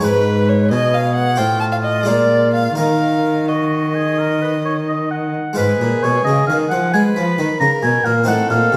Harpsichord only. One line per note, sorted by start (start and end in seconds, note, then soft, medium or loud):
0.00 0.67 G#2 soft
0.00 1.32 G#3 soft
0.00 1.33 D#4 soft
0.00 1.34 B4 soft
0.72 1.35 B2 soft
1.36 2.03 A2 soft
1.36 2.04 F4 soft
1.36 2.04 C5 soft
2.03 2.74 G#3 soft
2.03 2.74 F4 soft
2.03 2.75 A#4 soft
2.08 2.74 A#2 soft
2.75 5.34 D#3 soft
2.75 5.53 D#4 soft
2.75 5.53 A#4 soft
5.53 6.93 G#3 soft
5.53 8.22 F4 soft
5.53 8.23 B4 soft
5.58 5.78 G#2 soft
5.81 6.02 A#2 soft
6.04 6.24 B2 soft
6.27 6.47 C#3 soft
6.50 6.70 D#3 soft
6.72 6.92 F3 soft
6.94 7.14 G#3 soft
7.16 7.36 F3 soft
7.38 7.59 D#3 medium
7.61 7.81 C#3 soft
7.83 8.03 B2 medium
8.06 8.26 A#2 soft
8.24 8.77 C4 soft
8.24 8.77 D#4 soft
8.24 8.77 C5 soft
8.28 8.48 A2 soft
8.50 8.70 A#2 soft
8.72 8.77 C3 soft